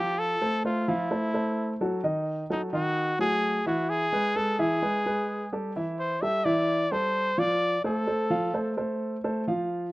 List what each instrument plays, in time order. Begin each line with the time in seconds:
Already playing: grand piano F3 F4 F5, trumpet G4
0.19 trumpet A4
0.41 grand piano A3 A4 C5
0.64 grand piano A3 A4 C5, trumpet F4
0.88 grand piano F3 F4 F5, trumpet E4
1.11 grand piano A3 A4 C5
1.34 grand piano A3 A4 C5
1.81 grand piano F#3 F#4 A4
2.04 grand piano D#3 D#4 D#5
2.50 grand piano F#3 F#4 A4, trumpet D#4
2.73 grand piano D#3 D#4 D#5, trumpet F#4
3.19 grand piano F#3 A3 F#4, trumpet G#4
3.66 grand piano E3 E4 E5, trumpet F#4
3.89 trumpet G#4
4.12 grand piano G#3 G#4 B4
4.35 grand piano G#3 G#4 B4, trumpet A4
4.59 grand piano E3 E4 E5, trumpet G#4
4.82 grand piano G#3 G#4 B4
5.06 grand piano G#3 G#4 B4
5.52 grand piano G3 G4 A4
5.76 grand piano E3 E4 E5
5.99 trumpet C5
6.22 grand piano G3 G4 A4, trumpet E5
6.45 grand piano E3 E4 E5, trumpet D5
6.92 grand piano G3 G4 A4, trumpet C5
7.38 grand piano F3 F4 F5, trumpet D5
7.84 grand piano A3 A4 C5, trumpet A4
8.07 grand piano A3 A4 C5
8.30 grand piano F3 F4 F5
8.54 grand piano A3 A4 C5
8.77 grand piano A3 A4 C5
9.24 grand piano A3 A4 C5
9.47 grand piano F3 F4 F5